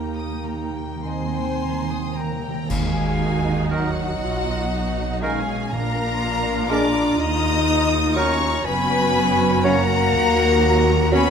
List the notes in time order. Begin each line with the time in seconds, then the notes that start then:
Already playing: D#2 A#3 D#4 G4 G5 A#5
0.06 D#3
0.16 D#3 D#6
0.25 D#3
0.34 D#3
0.43 D#3 A#5
0.52 D#3
0.70 D#3
0.75 G5
0.79 D#3
0.87 D#3
0.96 D#3
1.03 D#3 C4 C5 D#5 G#5 C6
1.12 D#3
1.21 D#3
1.30 D#3 G5
1.39 D#3
1.47 D#3
1.56 D#3
1.61 D#3 A#5
1.72 D#3
1.82 D#3
1.89 D#3 D#6
1.98 D#3
2.07 D#3
2.15 D#3 A#3 A#4 G5 A#5
2.23 D#3
2.32 D#3
2.39 D#3 G5
2.48 D#3
2.55 D#3
2.64 D#3 G#3
2.68 D#2 D#3 D#4 F#4 G#4 F5 G#5, concert bass drum, crash
3.71 D#3 F#3 D#4 F#4 A#4 D#5 F#5
4.21 B1 B2 D#4 F4
4.72 D#4
5.22 D#3 G#3 C#4 D#4 G#4 A#4 F5 G#5
5.71 A#1 A#2 A#3 D4 F4 A#4 F5 A#5
6.70 G#3 D4 A#4 D5 A#5 D6
7.17 D#2 D#4 D#5 A#5 D#6
8.16 F#3 C#4 D#4 A#4 C#5 A#5 C#6
8.65 F#1 F#2 B3 C#4 F#4 B4 G#5 B5
9.63 F#3 A#3 C#4 A#4 C#5 F#5 A#5
10.14 D#2 F#3 F#4
11.12 F#3 B3 C#4 B4 C#5 G#5 B5